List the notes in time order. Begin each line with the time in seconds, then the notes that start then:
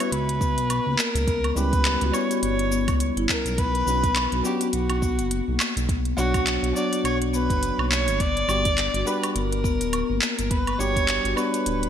Already playing: C#5
0.00 F#4, closed hi-hat, cabasa, low woodblock
0.12 C#2 B4, closed hi-hat, cabasa
0.29 closed hi-hat
0.41 B3, kick, cabasa
0.57 B1, closed hi-hat, cabasa
0.70 closed hi-hat, cabasa, low woodblock
0.86 C#2 A#3
0.98 A#4, clap, cabasa
1.15 C#2, closed hi-hat, cabasa
1.27 B3, kick, closed hi-hat, cabasa
1.44 closed hi-hat, low woodblock
1.55 C#2 G3 C#4 E4 G4 B4, cabasa
1.73 B3, kick, closed hi-hat, cabasa
1.85 clap, closed hi-hat, cabasa
2.01 C#2 F#4, closed hi-hat
2.12 G3 B3 C#4 E4 C#5, cabasa, low woodblock
2.31 F#4, closed hi-hat, cabasa
2.43 G1 C#5, closed hi-hat, cabasa
2.59 closed hi-hat
2.71 B3, cabasa
2.88 C#2, kick, closed hi-hat, cabasa, low woodblock
3.00 closed hi-hat, cabasa
3.17 G1 E4, closed hi-hat
3.29 A#4, kick, clap, cabasa
3.45 B1, closed hi-hat, cabasa
3.58 B3 B4, kick, closed hi-hat, cabasa
3.75 closed hi-hat
3.86 B1 F#3 B3 C#4 D4 F#4, cabasa
4.03 B3, kick, closed hi-hat, cabasa
4.16 clap, closed hi-hat, cabasa, low woodblock
4.32 B1 F#4, closed hi-hat
4.43 F#3 B3 C#4 D4 F#4 G4, cabasa
4.61 F#4, closed hi-hat, cabasa
4.73 B1 F#4, closed hi-hat, cabasa
4.90 closed hi-hat, low woodblock
5.02 B3, kick, cabasa
5.19 F#1, closed hi-hat, cabasa
5.31 closed hi-hat, cabasa
5.48 B1 A#3
5.60 clap, cabasa, low woodblock
5.76 B1, closed hi-hat, cabasa
5.89 B3, kick, closed hi-hat, cabasa
6.05 closed hi-hat
6.17 B1 F#3 D4 F#4 C#5, cabasa
6.34 kick, closed hi-hat, cabasa, low woodblock
6.47 clap, closed hi-hat, cabasa
6.63 B1 F#4, closed hi-hat
6.74 F#3 B3 D4 F#4 C#5 D5, cabasa
6.93 F#4, closed hi-hat, cabasa
7.04 B1 C#5, closed hi-hat, cabasa, low woodblock
7.22 closed hi-hat
7.34 B3 B4, cabasa
7.50 F#1, kick, closed hi-hat, cabasa
7.63 closed hi-hat, cabasa
7.78 B1 A#3, low woodblock
7.91 C#5, clap, cabasa
8.07 G1, closed hi-hat, cabasa
8.20 B3 D5, kick, closed hi-hat, cabasa
8.37 closed hi-hat
8.48 G1 G3 B3 D4 F#4 G4, cabasa, low woodblock
8.65 B3, kick, closed hi-hat, cabasa
8.78 clap, closed hi-hat, cabasa
8.94 G1 F#4, closed hi-hat
9.06 G3 B3 D4 F#4 G4 B4, cabasa
9.23 F#4, closed hi-hat, cabasa, low woodblock
9.35 G1 A#4, closed hi-hat, cabasa
9.53 closed hi-hat
9.64 B3, kick, cabasa
9.81 D1, closed hi-hat, cabasa
9.93 closed hi-hat, cabasa, low woodblock
10.10 G1 A#3
10.22 A#4, clap, cabasa
10.39 G1, closed hi-hat, cabasa
10.51 B3 B4, kick, closed hi-hat, cabasa
10.67 closed hi-hat, low woodblock
10.79 G1 G3 D4 F#4 G4 C#5, cabasa
10.96 B3, kick, closed hi-hat, cabasa
11.08 clap, closed hi-hat, cabasa
11.25 G1 F#4, closed hi-hat
11.35 G3 B3 D4 F#4 B4, cabasa, low woodblock
11.54 F#4, closed hi-hat, cabasa
11.66 D1, closed hi-hat, cabasa
11.83 closed hi-hat